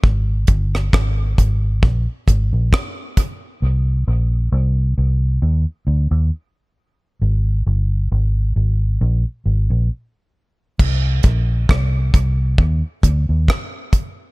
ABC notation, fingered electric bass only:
X:1
M:4/4
L:1/16
Q:"Swing 16ths" 1/4=67
K:Bbmix
V:1 name="Fingered electric bass" clef=bass
A,,,2 G,,,2 A,,,2 A,,,2 B,,, z A,,, B,,, z4 | C,,2 B,,,2 C,,2 C,,2 E,, z D,, E,, z4 | A,,,2 G,,,2 A,,,2 A,,,2 B,,, z A,,, B,,, z4 | C,,2 B,,,2 C,,2 C,,2 E,, z D,, E,, z4 |]